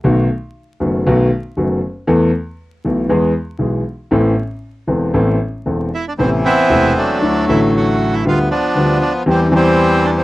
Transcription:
<<
  \new Staff \with { instrumentName = "Bandoneon" } { \time 4/4 \key a \minor \tempo 4 = 118 r1 | r1 | r2. r8 e'16 d'16 | c'8 e'4 d'4 e'8 fis'8. e'16 |
f'8 d'4 d'8 c'8 c'4 d'16 c'16 | }
  \new Staff \with { instrumentName = "Bandoneon" } { \clef bass \time 4/4 \key a \minor r1 | r1 | r1 | e8 <b c'>4 <fis a>4. a4 |
b8 <f b>4. <e g>8 <e g>4. | }
  \new Staff \with { instrumentName = "Grand piano" } { \clef bass \time 4/4 \key a \minor <b,, b, dis a b fis'>8 r4 <fis,, fis, dis a b fis'>8 <b,, b, dis a b fis'>8 r8 <fis,, fis, dis a b fis'>8 r8 | <e, e a b a'>8 r4 <b,, b, e a b a'>8 <e, e gis b gis'>8 r8 <b,, b, e gis b gis'>8 r8 | <a,, a, e b c' a'>8 r4 <e,, e, e b c' a'>8 <a,, a, e b c' a'>8 r8 <e,, e, e b c' a'>8 r8 | <a,, a, c a b e'>8 r8 <e,, e, c a b e'>8 r8 <d, d fis a e'>8 <a,, a, d fis a e'>4. |
<d, d g b f'>8 r8 <d, d g b f'>8 r8 <e, e g c' g'>8 <e, e g c' g'>4. | }
>>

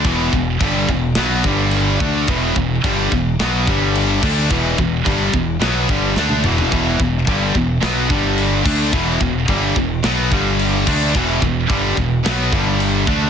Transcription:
<<
  \new Staff \with { instrumentName = "Distorted electric guitar" } { \clef bass \time 4/4 \key e \minor \tempo 4 = 108 <e, b, e>8 <e, b,>8 <g, d g>8 <e, b,>8 <b, fis b>8 <g, d g>4 <d a d'>8 | <e, b, e>8 <e, b,>8 <g, d g>8 <e, b,>8 <b, fis b>8 <g, d g>4 <d a d'>8 | <e, b, e>8 <e, b,>8 <g, d g>8 <e, b,>8 <b, fis b>8 <g, d g>8 <d a d'>8 <e, b, e>8 | <e, b, e>8 <e, b,>8 <g, d g>8 <e, b,>8 <b, fis b>8 <g, d g>4 <d a d'>8 |
<e, b, e>8 <e, b,>8 <g, d g>8 <e, b,>8 <b, fis b>8 <g, d g>4 <d a d'>8 | <e, b, e>8 <e, b,>8 <g, d g>8 <e, b,>8 <b, fis b>8 <g, d g>4 <d a d'>8 | }
  \new Staff \with { instrumentName = "Distorted electric guitar" } { \clef bass \time 4/4 \key e \minor <e, b, e>8 <e, b,>8 <g, d g>8 <e, b,>8 <b, fis b>8 <g, d g>4 <d a d'>8 | <e, b, e>8 <e, b,>8 <g, d g>8 <e, b,>8 <b, fis b>8 <g, d g>4 <d a d'>8 | <e, b, e>8 <e, b,>8 <g, d g>8 <e, b,>8 <b, fis b>8 <g, d g>8 <d a d'>8 <e, b, e>8 | <e, b, e>8 <e, b,>8 <g, d g>8 <e, b,>8 <b, fis b>8 <g, d g>4 <d a d'>8 |
<e, b, e>8 <e, b,>8 <g, d g>8 <e, b,>8 <b, fis b>8 <g, d g>4 <d a d'>8 | <e, b, e>8 <e, b,>8 <g, d g>8 <e, b,>8 <b, fis b>8 <g, d g>4 <d a d'>8 | }
  \new Staff \with { instrumentName = "Distorted electric guitar" } { \clef bass \time 4/4 \key e \minor <e, b, e>8 <e, b,>8 <g, d g>8 <e, b,>8 <b, fis b>8 <g, d g>4 <d a d'>8 | <e, b, e>8 <e, b,>8 <g, d g>8 <e, b,>8 <b, fis b>8 <g, d g>4 <d a d'>8 | <e, b, e>8 <e, b,>8 <g, d g>8 <e, b,>8 <b, fis b>8 <g, d g>8 <d a d'>8 <e, b, e>8 | <e, b, e>8 <e, b,>8 <g, d g>8 <e, b,>8 <b, fis b>8 <g, d g>4 <d a d'>8 |
<e, b, e>8 <e, b,>8 <g, d g>8 <e, b,>8 <b, fis b>8 <g, d g>4 <d a d'>8 | <e, b, e>8 <e, b,>8 <g, d g>8 <e, b,>8 <b, fis b>8 <g, d g>4 <d a d'>8 | }
  \new Staff \with { instrumentName = "Fingered electric bass" } { \clef bass \time 4/4 \key e \minor e,,8 e,,8 g,,8 e,,8 b,,8 g,,4 d,8 | e,,8 e,,8 g,,8 e,,8 b,,8 g,,4 d,8 | e,,8 e,,8 g,,8 e,,8 b,,8 g,,8 d,8 e,,8 | e,,8 e,,8 g,,8 e,,8 b,,8 g,,4 d,8 |
e,,8 e,,8 g,,8 e,,8 b,,8 g,,4 d,8 | e,,8 e,,8 g,,8 e,,8 b,,8 g,,4 d,8 | }
  \new DrumStaff \with { instrumentName = "Drums" } \drummode { \time 4/4 <cymc bd>8 bd8 <cymc bd>8 bd8 <cymc sn>8 bd8 cymc8 bd8 | <cymc bd>8 bd8 <cymc bd>8 bd8 <cymc sn>8 bd8 cymc8 <cymc bd>8 | <cymc bd>8 bd8 <cymc bd>8 bd8 <cymc sn>8 bd8 sn16 tommh16 toml16 tomfh16 | <cymc bd>8 bd8 <cymc bd>8 bd8 <cymc sn>8 bd8 cymc8 <cymc bd>8 |
<cymc bd>8 bd8 <cymc bd>8 bd8 <cymc sn>8 bd8 cymc8 <cymc bd>8 | <cymc bd>8 bd8 <cymc bd>8 bd8 <cymc sn>8 bd8 cymc8 bd8 | }
>>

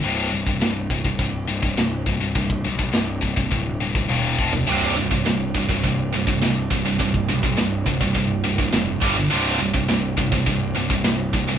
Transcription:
<<
  \new Staff \with { instrumentName = "Distorted electric guitar" } { \clef bass \time 4/4 \key ees \major \tempo 4 = 104 <c, g, c>8 <c, g,>16 <c, g,>16 <c, g,>8 <c, g,>16 <c, g,>16 <c, g,>8 <c, g,>16 <c, g,>16 <c, g,>8 <c, g,>16 <c, g,>16 | <c, g,>8 <c, g,>16 <c, g,>16 <c, g,>8 <c, g,>16 <c, g,>16 <c, g,>8 <c, g,>16 <c, g,>16 <ees, bes, ees>8 <f, c f>16 <f, c>16 | <c, g, c>8 <c, g,>16 <c, g,>16 <c, g,>8 <c, g,>16 <c, g,>16 <c, g,>8 <c, g,>16 <c, g,>16 <c, g,>8 <c, g,>16 <c, g,>16 | <c, g,>8 <c, g,>16 <c, g,>16 <c, g,>8 <c, g,>16 <c, g,>16 <c, g,>8 <c, g,>16 <c, g,>16 <c, g,>8 <g, d g>16 <g, d>16 |
<c, g, c>8 <c, g,>16 <c, g,>16 <c, g,>8 <c, g,>16 <c, g,>16 <c, g,>8 <c, g,>16 <c, g,>16 <c, g,>8 <c, g,>16 <c, g,>16 | }
  \new Staff \with { instrumentName = "Distorted electric guitar" } { \clef bass \time 4/4 \key ees \major r1 | r1 | <c, g, c>8 <c, g,>16 <c, g,>16 <c, g,>8 <c, g,>16 <c, g,>16 <c, g,>8 <c, g,>16 <c, g,>16 <c, g,>8 <c, g,>16 <c, g,>16 | <c, g,>8 <c, g,>16 <c, g,>16 <c, g,>8 <c, g,>16 <c, g,>16 <c, g,>8 <c, g,>16 <c, g,>16 <c, g,>8 <g, d g>16 <g, d>16 |
<c, g, c>8 <c, g,>16 <c, g,>16 <c, g,>8 <c, g,>16 <c, g,>16 <c, g,>8 <c, g,>16 <c, g,>16 <c, g,>8 <c, g,>16 <c, g,>16 | }
  \new Staff \with { instrumentName = "Picked electric bass" } { \clef bass \time 4/4 \key ees \major c,,8 c,,8 c,,8 c,,8 c,,8 c,,8 c,,8 c,,8 | c,,8 b,,8 c,,8 c,,8 d,,4 ees,,8 f,,8 | c,,8 c,,8 c,,8 c,,8 c,,8 c,,8 c,,8 c,,8 | c,,8 b,,8 c,,8 c,,8 c,,4 f,,8 g,,8 |
c,,8 c,,8 c,,8 c,,8 c,,8 c,,8 c,,8 c,,8 | }
  \new DrumStaff \with { instrumentName = "Drums" } \drummode { \time 4/4 rb8. bd16 <rb sn>8 bd16 bd16 <bd rb>8. bd16 <rb sn>8 bd8 | <bd rb>16 bd8 bd16 <rb sn>8 bd16 bd16 <bd rb>8. bd16 tommh8 bd16 tomfh16 | rb8. bd16 <rb sn>8 bd16 bd16 <bd rb>8. bd16 <rb sn>8 bd8 | <bd rb>16 bd8 bd16 <rb sn>8 bd16 bd16 <bd rb>8. bd16 <rb sn>8 bd8 |
rb8. bd16 <rb sn>8 bd16 bd16 <bd rb>8. bd16 <rb sn>8 bd8 | }
>>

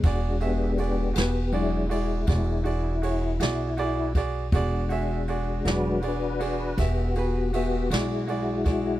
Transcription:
<<
  \new Staff \with { instrumentName = "Upright piano" } { \time 12/8 \key e \mixolydian \tempo 4. = 53 <fis' gis' d''>8 <fis' gis' e''>8 <fis' gis' d''>8 <fis' gis' b'>8 <fis' gis' d''>8 <fis' gis' d''>8 <fis' gis' d''>8 <fis' gis' d''>8 <fis' gis' cis''>8 <fis' gis' d''>8 <fis' gis' d''>8 <fis' gis' d''>8 | <fis' gis' d''>8 <fis' gis' e''>8 <fis' gis' d''>8 <fis' gis' d''>8 <fis' gis' d''>8 <fis' gis' d''>8 <fis' gis' e''>8 <fis' gis' b'>8 <fis' gis' e''>8 <fis' gis' d''>8 <fis' gis' d''>8 <fis' gis' d''>8 | }
  \new Staff \with { instrumentName = "Tonewheel organ" } { \time 12/8 \key e \mixolydian r8 <b fis' g'>8 <b g'>8 <b g'>8 e'8 <gis e'>8 <gis e'>8 <dis' e'>2 r8 | r4. <ais' b'>8 <d' b'>8 <d' b'>8 <b g'>8 <b g'>8 <b g'>8 <gis e'>8 <gis e'>8 <gis e'>8 | }
  \new Staff \with { instrumentName = "Tonewheel organ" } { \time 12/8 \key e \mixolydian <gis d' fis'>4. r8 <fis gis d'>8 r2. r8 | <gis d' fis'>4. <fis gis d'>8 r1 | }
  \new Staff \with { instrumentName = "Upright bass" } { \clef bass \time 12/8 \key e \mixolydian e,,4. e,,4. e,,4. b,,4. | e,,4. e,,4. e,,4. b,,4. | }
  \new DrumStaff \with { instrumentName = "Drums" } \drummode { \time 12/8 <bd cymr>8 cymr8 cymr8 <cymr sn>8 cymr8 cymr8 <bd cymr sn>8 cymr8 cymr8 <cymr sn>8 cymr8 <bd cymr>8 | <bd cymr>8 cymr8 cymr8 <cymr sn>8 cymr8 cymr8 <bd cymr sn>8 cymr8 cymr8 <cymr sn>8 cymr8 <bd cymr>8 | }
>>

